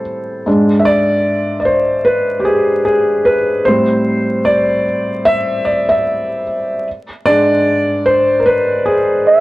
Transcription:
Already playing: felt piano A2 G3 C4 A4
0.46 felt piano G#2 G#3 D4
0.79 felt piano E5
0.85 felt piano D5
1.60 felt piano D5
1.65 felt piano C5
2.05 felt piano B4
2.40 felt piano G4
2.45 felt piano G#4
2.85 felt piano G#4
3.25 felt piano B4
3.65 felt piano A2 G3 C4 C5
4.45 felt piano D5
5.25 felt piano E5
5.65 felt piano D5
5.89 felt piano E5
7.26 felt piano G#2 G#3 D4 D5
8.06 felt piano C5
8.40 felt piano A#4
8.46 felt piano B4
8.86 felt piano G#4
9.28 flugelhorn E5

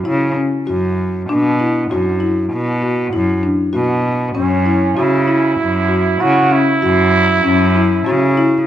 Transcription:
0.05 cello C#3, marimba E4
0.36 marimba C#4
0.67 cello F#2, marimba F#4
1.29 cello B2, marimba D4
1.60 marimba E4
1.91 cello F#2, marimba F#4
2.20 marimba E4
2.53 cello B2
2.82 marimba F#4
3.13 cello F#2, marimba E4
3.43 marimba D4
3.73 cello B2, marimba F#4
4.35 cello F#2, marimba C#4, trumpet C#4
4.66 marimba E4
4.97 cello C#3, trumpet E4, marimba F#4
5.28 marimba E4
5.60 cello F#2
5.88 marimba F#4
6.20 cello C#3, marimba E4, trumpet F#4
6.51 marimba C#4, trumpet E4
6.82 cello F#2, marimba F#4
7.44 cello F#2, marimba C#4
7.76 marimba E4
8.06 cello C#3, marimba F#4
8.37 marimba E4

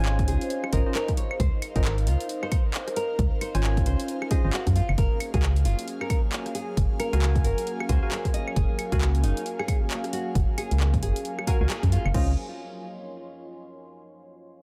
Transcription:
Already playing: fm bass G#1, synth stab C#4 F4 C5 G#5, analog synth pad D#4 G#4 C5 F5, ambient pad C5 D#5 F5
0.05 clap
0.19 kick, closed hi-hat
0.28 fm bass C#2, nylon-string guitar G#4, open hi-hat
0.41 closed hi-hat
0.50 closed hi-hat
0.64 cross-stick, claves
0.73 fm bass G#1, synth stab C#4 F4 C5 D#5, nylon-string guitar A#4, kick, open hi-hat
0.86 synth stab C#4 F4 C5 D#5
0.95 nylon-string guitar A#4, clap, closed hi-hat
1.08 kick, cross-stick, closed hi-hat
1.17 nylon-string guitar C#5, open hi-hat
1.31 claves
1.40 fm bass C#2, analog synth pad A#4, nylon-string guitar C5, kick, closed hi-hat
1.62 open hi-hat, claves
1.76 fm bass G#1, synth stab C#4 F4 C5 D#5, nylon-string guitar A#4, kick, closed hi-hat
1.85 clap
1.98 closed hi-hat
2.07 fm bass C#2, nylon-string guitar F4, open hi-hat
2.21 closed hi-hat
2.29 closed hi-hat
2.43 nylon-string guitar C5, cross-stick, claves
2.52 kick, open hi-hat, claves
2.74 clap, closed hi-hat
2.88 cross-stick, closed hi-hat
2.96 nylon-string guitar A#4, open hi-hat
3.19 fm bass C#2, kick, closed hi-hat
3.41 nylon-string guitar C5, open hi-hat, claves
3.55 fm bass G#1, synth stab C#4 F4 C5 G#5, closed hi-hat
3.64 clap
3.77 kick, closed hi-hat
3.86 fm bass C#2, nylon-string guitar C5, open hi-hat
4.00 closed hi-hat
4.08 closed hi-hat
4.22 cross-stick, claves
4.31 synth stab C#4 F4 C5 D#5, nylon-string guitar G#4, kick, open hi-hat
4.44 fm bass G#1, synth stab C#4 F4 C5 D#5
4.53 nylon-string guitar F#4, clap, closed hi-hat
4.67 fm bass F#2, kick, cross-stick, closed hi-hat
4.75 ambient pad F#3, analog synth pad A#3 C#4 G#4, nylon-string guitar F4, open hi-hat
4.89 fm bass F#1, ambient pad A#4, claves
4.98 fm bass F#1, nylon-string guitar A#4, kick, closed hi-hat
5.05 ambient pad F5
5.13 ambient pad G#5
5.20 open hi-hat, claves
5.34 fm bass C#2, synth stab F#4 A#4 F5 G#5, nylon-string guitar G#4, kick, closed hi-hat
5.43 clap
5.56 closed hi-hat
5.65 fm bass F#1, nylon-string guitar F4, open hi-hat
5.79 closed hi-hat
5.88 closed hi-hat
6.01 nylon-string guitar A#4, cross-stick, claves
6.10 kick, open hi-hat, claves
6.32 clap, closed hi-hat
6.46 cross-stick, closed hi-hat
6.55 nylon-string guitar G#4, open hi-hat
6.77 fm bass F#1, kick, closed hi-hat
7.00 nylon-string guitar A#4, open hi-hat, claves
7.13 fm bass C#2, synth stab F#4 A#4 F5 G#5, closed hi-hat
7.22 clap
7.36 kick, closed hi-hat
7.44 fm bass F#1, nylon-string guitar A#4, open hi-hat
7.58 closed hi-hat
7.67 closed hi-hat
7.80 cross-stick, claves
7.89 fm bass C#2, synth stab F#4 A#4 F5 G#5, nylon-string guitar C5, kick, open hi-hat
8.03 synth stab F#4 A#4 F5 G#5
8.11 nylon-string guitar C5, clap, closed hi-hat
8.25 kick, cross-stick, closed hi-hat
8.34 nylon-string guitar D#5, open hi-hat
8.48 claves
8.56 fm bass F#1, nylon-string guitar G#4, kick, closed hi-hat
8.79 open hi-hat, claves
8.92 fm bass C#2, synth stab F#4 A#4 F5 G#5, nylon-string guitar F#4, kick, closed hi-hat
9.01 clap
9.15 closed hi-hat
9.23 fm bass F#1, nylon-string guitar D#4, open hi-hat
9.37 closed hi-hat
9.46 closed hi-hat
9.59 nylon-string guitar G#4, cross-stick, claves
9.68 kick, open hi-hat, claves
9.91 clap, closed hi-hat
10.04 cross-stick, closed hi-hat
10.13 nylon-string guitar F#4, open hi-hat
10.35 fm bass F#1, kick, closed hi-hat
10.58 nylon-string guitar G#4, open hi-hat, claves
10.71 fm bass C#2, closed hi-hat
10.80 clap
10.94 kick, closed hi-hat
11.02 fm bass F#1, nylon-string guitar G#4, open hi-hat
11.16 closed hi-hat
11.25 closed hi-hat
11.39 cross-stick, claves
11.47 synth stab F#4 A#4 F5 G#5, nylon-string guitar A#4, kick, open hi-hat
11.61 fm bass C#2, synth stab F#4 A#4 F5 G#5
11.70 nylon-string guitar G#4, clap, closed hi-hat
11.83 fm bass F#2, kick, cross-stick, closed hi-hat
11.92 nylon-string guitar F4, open hi-hat
12.05 fm bass F#1, claves
12.14 fm bass C#2, analog synth pad C4 D#4 F4 G#4, synth stab C#4 F4 C5 D#5, nylon-string guitar F4, ambient pad F4, kick, crash
12.23 ambient pad C#5
12.30 ambient pad D#5
12.35 ambient pad C6

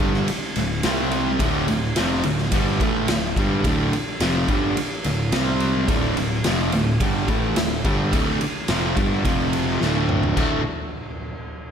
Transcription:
0.00 picked electric bass G1, distorted electric guitar G2 D3 G3, ride
0.14 snare
0.28 muted distorted electric guitar stroke, muted picked electric bass stroke, ride
0.56 picked electric bass D1, distorted electric guitar D2 A2, ride
0.83 picked electric bass C2, distorted electric guitar C3 G3 C4, snare, ride
1.11 ride
1.40 picked electric bass D1, distorted electric guitar D2 A2 D3, kick, ride
1.68 picked electric bass D1, distorted electric guitar D2 A2, ride
1.96 picked electric bass F1, distorted electric guitar F2 C3 F3, snare, ride
2.23 picked electric bass D1, distorted electric guitar D2 A2, ride
2.38 snare
2.52 picked electric bass G1, distorted electric guitar G2 D3 G3, kick, ride
2.80 picked electric bass A1, distorted electric guitar A2 E3 A3, kick, ride
3.08 picked electric bass D1, distorted electric guitar D2 A2, snare, ride
3.36 picked electric bass G1, distorted electric guitar G2 D3 G3, kick, ride
3.64 picked electric bass D1, distorted electric guitar D2 A2 D3, kick, ride
3.93 muted picked electric bass stroke, muted distorted electric guitar stroke, ride
4.20 picked electric bass F1, distorted electric guitar F2 C3 F3, snare, ride
4.48 picked electric bass G1, distorted electric guitar G2 D3 G3, kick, ride
4.77 muted picked electric bass stroke, muted distorted electric guitar stroke, ride
5.04 picked electric bass D1, distorted electric guitar D2 A2, ride
5.32 picked electric bass C2, distorted electric guitar C3 G3 C4, snare, ride
5.60 ride
5.88 picked electric bass D1, distorted electric guitar D2 A2 D3, kick, ride
6.16 picked electric bass D1, distorted electric guitar D2 A2, ride
6.44 picked electric bass F1, distorted electric guitar F2 C3 F3, snare, ride
6.72 picked electric bass D1, distorted electric guitar D2 A2, ride
7.00 picked electric bass G1, distorted electric guitar G2 D3 G3, kick, ride
7.28 picked electric bass A1, distorted electric guitar A2 E3 A3, kick, ride
7.56 picked electric bass D1, distorted electric guitar D2 A2, snare, ride
7.85 picked electric bass G1, distorted electric guitar G2 D3 G3, kick, ride
8.13 picked electric bass D1, distorted electric guitar D2 A2 D3, kick, ride
8.41 muted picked electric bass stroke, muted distorted electric guitar stroke, ride
8.68 picked electric bass F1, distorted electric guitar F2 C3 F3, snare, ride
8.97 picked electric bass G1, distorted electric guitar G2 D3 G3, kick, ride
9.25 picked electric bass F1, distorted electric guitar F2 C3 F3, kick, ride
9.53 ride
9.81 picked electric bass D1, distorted electric guitar D2 A2 D3, snare
10.09 mid tom
10.23 floor tom
10.37 picked electric bass D1, distorted electric guitar D2 A2 D3 A3 F#4, kick, crash

